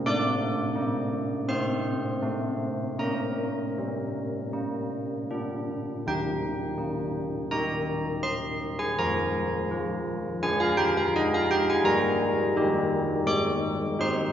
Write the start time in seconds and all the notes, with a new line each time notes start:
0.06 A3 D5 D6
0.76 A#3
1.48 C4 C5 C6
2.22 A3
2.99 A#3 A#4 A#5
3.78 G3
4.53 A#3
5.31 D4
6.07 D#3 G5
6.78 A#3
7.51 D#4 G4 A#5
8.23 C6
8.79 G#5
8.99 F3 A#5
9.71 F4
10.43 D4 G#4 G#5
10.60 F5
10.77 G5
10.97 F5
11.16 D#5
11.34 F5
11.51 G5
11.70 G#5
11.84 G3 A#5
12.56 D#4 G4
13.26 G#3 D6
13.99 D#4 C5 C6